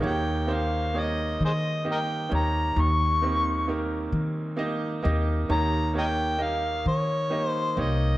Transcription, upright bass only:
X:1
M:6/8
L:1/8
Q:3/8=44
K:Ebmix
V:1 name="Upright bass" clef=bass
E,,3 E,2 E,, | E,,3 E,2 E,, | E,,3 E,2 C,, |]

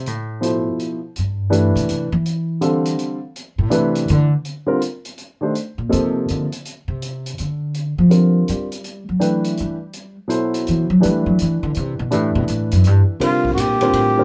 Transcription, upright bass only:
X:1
M:3/4
L:1/8
Q:"Swing" 1/4=164
K:Ddor
V:1 name="Upright bass" clef=bass
A,,3 z3 | G,,3 B,, C, E,- | E,4 z2 | z A,, C,2 D, z |
[K:Dphr] z6 | z B,, C,2 D, z | z C,3 D,2- | D, F,3 G,2- |
G, ^F,3 G,2- | G, z3 =E, ^F, | G, ^F, =E, D, C, =B,, | A,, =B,, A,, ^F,, G,, z |
C,2 B,,2 A,,2 |]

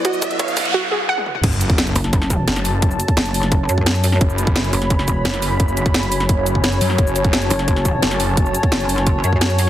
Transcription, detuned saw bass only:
X:1
M:4/4
L:1/8
Q:1/4=173
K:F#m
V:1 name="Detuned saw bass" clef=bass
z8 | F,,,3 z3 F,,,2- | F,,, z6 z | F,,,3 z3 F,,,2- |
F,,, F,,,3 F,,,3 F,, | F,,,3 z3 F,,,2- | F,,, z6 z |]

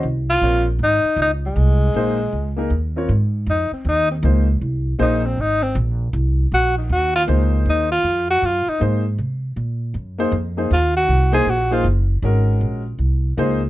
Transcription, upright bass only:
X:1
M:4/4
L:1/8
Q:"Swing" 1/4=157
K:Abmix
V:1 name="Upright bass" clef=bass
C,,2 B,,,2 A,,, z D,,2 | C,,2 B,,,2 D,,2 E,,2 | A,,2 F,, z E,,2 D,,2 | C,,2 B,,,2 A,,,2 B,,,2 |
C,,2 B,,,2 E,,2 D,,2 | E,,2 F,,2 G,, z A,,2 | C,2 B,,2 G,,2 F,,2 | E,,2 C,,2 B,,,2 G,,,2 |
A,,,2 B,,,2 C,,2 D,,2 |]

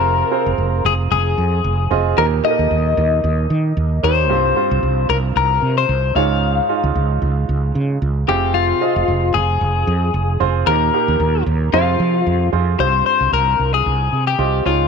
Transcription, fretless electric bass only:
X:1
M:4/4
L:1/16
Q:"Swing 16ths" 1/4=113
K:Fm
V:1 name="Fretless electric bass" clef=bass
F,,,2 z F,,, F,,,2 F,,,2 F,,,2 F,,2 F,,,2 F,,,2 | E,,2 z E,, E,,2 E,,2 E,,2 E,2 E,,2 E,,2 | C,,2 z C,, C,,2 C,,2 C,,2 C,2 C,,2 D,,2- | D,,2 z D,, D,,2 D,,2 D,,2 D,2 D,,2 F,,,2- |
F,,,2 z F,,, F,,,2 F,,,2 F,,,2 F,,2 F,,,2 F,,,2 | E,,2 z E,, E,,2 E,,2 F,,2 F,2 F,,2 F,,2 | C,,2 z C,, C,,2 C,,2 C,,2 C,2 C,,2 D,,2 |]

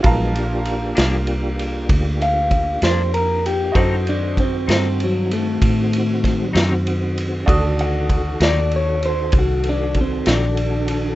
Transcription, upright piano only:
X:1
M:12/8
L:1/8
Q:3/8=65
K:Dphr
V:1 name="Upright piano"
[FBfa]12 | [^FAce]12 | [D^FAe']12 |]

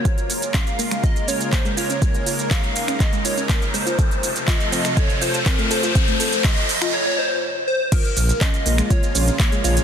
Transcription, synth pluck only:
X:1
M:4/4
L:1/16
Q:1/4=122
K:Bbm
V:1 name="Synth pluck"
F z3 D z B, A, F z D z B, A, F D | B, A, F z4 D B, A, F D B, z A, F | =A z3 F z C =A, A z F z C A, A F | C =A, =A z4 F z8 |
F z3 D z B, A, F z D z B, A, F D |]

